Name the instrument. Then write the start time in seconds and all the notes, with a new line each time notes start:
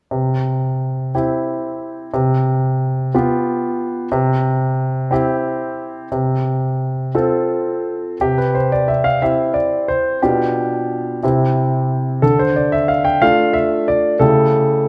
grand piano
0.11 C3
1.15 C4 E4 G4
2.14 C3
3.14 B3 F4 G4
4.12 C3
5.11 C4 E4 G4
6.12 C3
7.15 C4 F4 A4
8.21 C3 G4
8.38 B4
8.55 C5
8.72 D5
8.88 E5
9.04 F5
9.22 C4 E4 G4 E5
9.54 D5
9.88 C5
10.22 B2 D4 F4 G4
11.23 C3 C4 E4 G4
12.22 D3 A4
12.39 C5
12.56 D5
12.72 E5
12.88 F5
13.05 G5
13.22 A3 D4 F4 F5
13.53 E5
13.88 D5
14.19 C#3 A3 E4 G4 A4